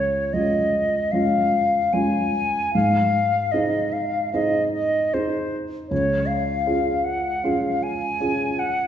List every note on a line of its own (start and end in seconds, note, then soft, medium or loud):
0.00 0.31 C#2 soft
0.00 0.35 C#5 medium
0.33 1.08 G#3 soft
0.33 1.08 C#4 soft
0.33 1.09 F4 soft
0.33 1.13 D#5 soft
1.12 1.89 G#3 soft
1.12 1.90 C#4 soft
1.12 1.90 F4 soft
1.12 1.94 F5 soft
1.93 2.70 G#3 soft
1.93 2.70 C#4 soft
1.93 2.70 F4 soft
1.93 2.73 G#5 soft
2.74 3.51 G#2 soft
2.74 3.53 F5 medium
3.52 4.29 C4 soft
3.52 4.30 D#4 soft
3.52 4.30 G#4 soft
3.52 3.94 D#5 soft
3.93 4.33 F5 soft
4.34 5.10 C4 soft
4.34 5.10 D#4 soft
4.34 5.11 G#4 soft
4.34 4.72 D#5 soft
4.73 5.15 D#5 medium
5.14 5.87 C4 soft
5.14 5.87 D#4 soft
5.14 5.87 G#4 soft
5.14 5.57 C5 soft
5.89 6.65 C#2 soft
5.89 6.28 C#5 soft
6.26 7.06 F5 soft
6.67 7.40 C#4 soft
6.67 7.40 F4 soft
6.67 7.41 G#4 soft
7.04 7.45 F#5 soft
7.44 8.17 C#4 soft
7.44 8.17 F4 soft
7.44 8.18 G#4 soft
7.44 7.84 F5 soft
7.83 8.61 G#5 medium
8.20 8.87 C#4 soft
8.20 8.87 F4 soft
8.20 8.87 G#4 soft
8.59 8.87 F#5 medium